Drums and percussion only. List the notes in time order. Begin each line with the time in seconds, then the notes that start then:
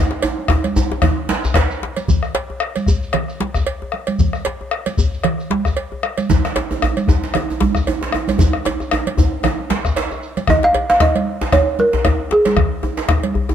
0.11 djembe slap
0.22 bombo rim, cowbell, djembe slap, djembe tone, shekere
0.38 high conga
0.48 bombo rim, bombo low, djembe slap, djembe tone, high conga
0.63 bombo rim, cowbell, djembe slap, high conga, shekere
0.76 djembe slap, djembe tone, djembe bass, shekere
0.92 djembe slap, djembe tone
1.02 bombo rim, bombo low, cowbell, djembe tone, low conga
1.17 bombo rim, djembe slap
1.29 djembe slap, high conga, shekere
1.44 djembe slap, high conga, djembe bass, shekere
1.54 bombo rim, bombo low, cowbell, djembe slap, djembe tone
1.70 djembe slap, high conga, shekere
1.82 djembe slap, high conga
1.97 cowbell, high conga, shekere
2.08 bombo low, djembe slap, low conga, djembe bass, shekere
2.23 bombo rim, shekere
2.35 cowbell, djembe slap
2.50 djembe tone
2.60 bombo rim
2.76 cowbell, high conga, shekere
2.86 bombo rim, bombo low, djembe bass, shekere
3.03 shekere
3.13 bombo rim, cowbell, djembe tone, low conga
3.28 bombo rim, djembe slap, shekere
3.40 djembe slap, high conga
3.54 bombo rim, bombo low, high conga, djembe bass, shekere
3.67 cowbell, djembe slap
3.82 djembe tone
3.92 bombo rim, high conga
4.07 cowbell, high conga, shekere
4.19 bombo low, djembe slap, low conga, djembe bass, shekere
4.33 bombo rim, shekere
4.45 cowbell, djembe slap
4.61 djembe tone
4.71 bombo rim
4.86 cowbell, high conga, shekere
4.97 bombo rim, bombo low, djembe bass, shekere
5.14 shekere
5.24 bombo rim, cowbell, djembe tone, low conga
5.38 bombo rim, djembe slap, shekere
5.50 djembe slap, high conga
5.65 bombo rim, bombo low, high conga, djembe bass, shekere
5.77 cowbell, djembe slap
5.92 djembe tone
6.03 bombo rim, high conga
6.18 bombo rim, cowbell, high conga, shekere
6.29 bombo low, djembe slap, djembe tone, low conga, djembe bass, shekere
6.45 bombo rim, djembe slap, shekere
6.56 cowbell, djembe slap, djembe tone
6.71 djembe tone
6.82 bombo rim, djembe bass
6.97 cowbell, high conga, shekere
7.08 bombo rim, bombo low, djembe tone, djembe bass, shekere
7.24 djembe slap, shekere
7.34 bombo rim, cowbell, djembe tone, low conga
7.49 bombo rim, djembe slap, djembe tone, shekere
7.60 djembe slap, high conga, djembe bass
7.75 bombo rim, bombo low, high conga, djembe bass, shekere
7.87 cowbell, djembe slap, djembe tone
8.01 djembe slap, djembe tone
8.12 bombo rim, high conga, djembe tone
8.28 cowbell, high conga, djembe tone, shekere
8.39 bombo rim, bombo low, djembe tone, djembe bass, low conga, shekere
8.53 bombo rim, djembe slap
8.65 cowbell, djembe slap, high conga, djembe tone
8.80 bombo rim, djembe slap, djembe tone, shekere
8.91 bombo rim, high conga, djembe tone
9.07 cowbell, high conga
9.17 bombo low, djembe slap, high conga, djembe tone, djembe bass, shekere
9.33 djembe slap
9.43 bombo rim, cowbell, djembe slap, djembe tone, low conga
9.45 djembe tone, shekere
9.59 bombo rim, djembe slap, high conga
9.70 djembe slap, high conga
9.85 bombo rim, bombo low, djembe slap, djembe bass, shekere
9.96 bombo rim, cowbell, djembe slap
10.11 bombo rim, djembe tone, shekere
10.23 shekere
10.37 bombo rim, cowbell, djembe slap, high conga, shekere
10.47 bombo rim, bombo low, high conga, djembe tone, low conga, djembe bass
10.63 djembe slap
10.74 cowbell, djembe tone, high conga
10.90 djembe slap
11.00 bombo rim, bombo low, djembe slap, djembe tone
11.15 cowbell, high conga
11.27 bombo rim
11.41 bombo rim, djembe slap, djembe tone
11.52 bombo rim, bombo low, cowbell, djembe tone, low conga
11.79 high conga
11.93 djembe slap, djembe bass
12.05 bombo rim, bombo low, cowbell, djembe slap, djembe tone
12.19 bombo rim
12.31 bombo rim, djembe slap
12.45 cowbell, djembe slap, high conga
12.57 bombo rim, bombo low, high conga, djembe bass, low conga
12.83 djembe tone, high conga
12.97 djembe slap
13.09 bombo rim, bombo low, djembe slap, djembe tone
13.23 cowbell, high conga
13.34 bombo rim, djembe bass
13.49 bombo rim, djembe slap, djembe tone